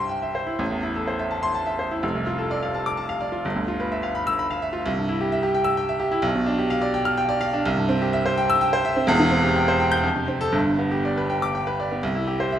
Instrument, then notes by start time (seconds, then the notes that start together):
grand piano
Already playing: C2 G2 E4 G4 C5 E5 G5 C6
0.09 G5
0.22 E5
0.35 C5
0.46 E4
0.59 A1
0.71 E2
0.83 E4
0.96 A4
1.08 C5
1.19 E5
1.31 A5
1.43 C6
1.54 A5
1.66 E5
1.79 C5
1.91 E4
2.03 F1
2.14 C2
2.27 F4
2.38 A4
2.51 D5
2.63 F5
2.75 A5
2.86 D6
2.97 A5
3.09 F5
3.21 D5
3.32 F4
3.45 G1
3.56 D2
3.68 F4
3.80 B4
3.92 E5
4.03 F5
4.15 B5
4.27 E6
4.39 B5
4.51 F5
4.62 E5
4.73 F4
4.86 C2
4.97 G2
5.08 E4
5.21 G4
5.32 E5
5.43 G4
5.55 G5
5.64 E6
5.77 G5
5.89 E5
6.00 G4
6.11 E4
6.22 B1
6.35 B2
6.46 D4
6.59 G4
6.70 F5
6.82 D5
6.94 G5
7.05 F6
7.17 G5
7.29 D5
7.41 F5
7.53 D4
7.66 C2
7.77 G2
7.89 C4
8.02 G4
8.13 E5
8.26 C5
8.38 G5
8.50 E6
8.61 G5
8.73 C5
8.85 E5
8.96 C4
9.07 E1 E2
9.20 E3
9.31 C4
9.43 G4
9.56 G5
9.68 C5
9.80 G5
9.92 G6
10.03 F2
10.16 C3
10.28 C4
10.41 A4
10.52 G1 G2
10.66 D3
10.79 B3
10.91 G4
11.05 D5
11.17 B4
11.30 G5
11.42 D6
11.55 G5
11.67 B4
11.80 D5
11.92 B3
12.03 C2
12.15 E4
12.27 G4
12.40 C5
12.52 E5